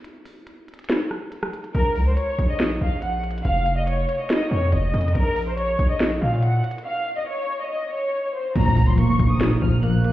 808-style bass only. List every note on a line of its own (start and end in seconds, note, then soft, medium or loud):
1.75 1.97 A#1 loud
1.96 2.16 C#2 loud
2.39 2.79 A#1 loud
2.81 3.42 A#1 loud
3.45 4.06 F1 loud
4.51 4.72 F2 loud
4.73 4.93 F1 loud
4.94 5.14 F2 loud
5.15 5.76 A#1 loud
5.79 6.20 A#1 loud
6.21 6.62 A#2 loud
8.56 8.78 A#1 loud
8.77 8.97 C#2 loud
9.19 9.60 A#1 loud
9.62 10.13 A#1 loud